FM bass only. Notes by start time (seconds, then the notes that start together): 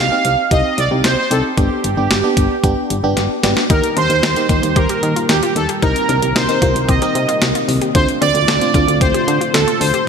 0.25 C2
0.51 C2
0.78 C2
0.91 C2
1.05 C2
1.31 C2
1.58 G1
1.84 G1
1.97 G1
2.11 G1
2.37 G1
2.64 G1
2.90 G1
3.04 G1
3.17 G1
3.43 G1
3.70 D#2
3.97 D#2
4.10 D#2
4.23 D#2
4.49 D#2
4.63 D#2
4.76 D#2
5.03 D#3
5.29 D#2
5.56 D#2
5.82 C2
6.09 C2
6.22 C2
6.35 C2
6.62 C2
6.75 C2
6.89 C2
7.15 C3
7.42 C2
7.68 C2
7.95 D2
8.21 D2
8.35 D2
8.48 D2
8.74 D2
8.88 D2
9.01 D2
9.28 D3
9.54 D2
9.81 D2